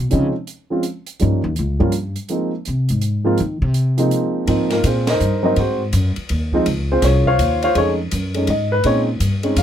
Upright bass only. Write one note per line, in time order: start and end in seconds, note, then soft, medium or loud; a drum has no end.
0.00 0.10 B2 medium
0.13 0.26 C#3 loud
1.22 1.43 G2 loud
1.44 1.56 D#2 loud
1.59 1.80 C#2 medium
1.80 2.14 G2 medium
2.68 2.89 C3 medium
2.90 3.35 G#2 medium
3.40 3.61 D#3 medium
3.62 4.08 C3 loud
4.48 4.83 G#2 medium
4.84 5.19 A#2 medium
5.20 5.56 G2 medium
5.57 5.92 G#2 medium
5.93 6.15 F#2 medium
6.17 muted upright bass stroke soft
6.30 6.65 D#2 medium
6.66 7.01 C#2 medium
7.02 7.37 C2 medium
7.39 7.74 D#2 medium
7.75 8.11 F2 medium
8.12 8.47 F#2 medium
8.48 8.83 G#2 medium
8.84 9.20 A#2 medium
9.20 9.56 G2 medium
9.56 9.63 F2 medium